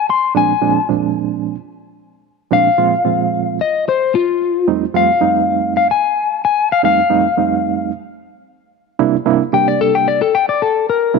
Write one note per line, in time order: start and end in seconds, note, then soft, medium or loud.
0.10 0.35 C6 medium
0.35 0.52 A#2 medium
0.35 0.51 F3 medium
0.35 0.52 G#3 medium
0.35 0.52 C4 medium
0.35 0.52 D4 medium
0.35 0.88 G#5 medium
0.62 0.78 A#2 medium
0.62 0.78 F3 medium
0.62 0.79 G#3 medium
0.62 0.79 C4 medium
0.62 0.79 D4 medium
0.89 1.55 A#2 medium
0.89 1.55 F3 medium
0.89 1.55 G#3 medium
0.89 1.55 C4 medium
0.89 1.55 D4 medium
2.51 2.68 A#2 medium
2.51 2.68 F3 medium
2.51 2.68 G#3 medium
2.51 2.68 C4 medium
2.51 2.68 D4 medium
2.51 3.57 F5 loud
2.78 2.95 A#2 medium
2.78 2.95 F3 medium
2.78 2.95 G#3 medium
2.78 2.95 C4 medium
2.78 2.95 F4 medium
3.05 3.59 A#2 medium
3.05 3.59 F3 medium
3.05 3.59 G#3 medium
3.05 3.59 C4 medium
3.05 3.59 F4 medium
3.61 3.86 D#5 medium
3.89 4.14 C5 medium
4.15 4.66 F4 medium
4.67 4.84 F2 medium
4.67 4.84 G3 medium
4.67 4.84 A3 medium
4.67 4.84 C4 medium
4.67 4.84 D#4 medium
4.94 5.11 F2 medium
4.94 5.11 G3 medium
4.94 5.11 A3 medium
4.94 5.11 C4 medium
4.94 5.11 F4 medium
4.94 5.74 F5 medium
5.21 5.86 F2 medium
5.21 5.86 G3 medium
5.21 5.86 A3 medium
5.21 5.87 C4 medium
5.21 5.86 D#4 medium
5.77 5.90 F5 medium
5.91 6.42 G#5 medium
6.45 6.70 G#5 medium
6.72 6.84 F5 medium
6.83 7.00 F2 medium
6.83 7.00 G3 medium
6.83 7.00 A3 medium
6.83 7.00 C4 medium
6.83 7.00 D#4 medium
6.83 7.89 F5 medium
7.10 7.27 F2 medium
7.10 7.27 G3 medium
7.10 7.27 A3 medium
7.10 7.27 C4 medium
7.10 7.27 D#4 medium
7.37 7.91 F2 medium
7.37 7.91 G3 medium
7.37 7.91 A3 medium
7.37 7.91 C4 medium
7.37 7.91 D#4 medium
8.99 9.16 C3 medium
8.99 9.16 G3 medium
8.99 9.15 A#3 medium
8.99 9.15 D4 medium
8.99 9.16 E4 loud
9.26 9.42 C3 medium
9.26 9.42 G3 medium
9.26 9.42 A#3 medium
9.26 9.42 D4 medium
9.26 9.42 E4 loud
9.53 10.18 C3 medium
9.53 10.18 G3 medium
9.53 10.18 A#3 medium
9.53 10.18 D4 medium
9.53 10.18 G4 medium
9.53 9.67 G5 medium
9.68 9.80 D5 medium
9.81 9.94 A4 medium
9.95 10.07 G5 medium
10.08 10.21 D5 medium
10.22 10.33 A4 medium
10.35 10.48 G5 medium
10.49 10.61 D5 medium
10.62 10.87 A4 medium
10.90 11.19 A#4 medium
11.14 11.19 C3 medium
11.14 11.19 G3 medium
11.14 11.19 A#3 medium
11.14 11.19 D4 medium
11.14 11.19 E4 medium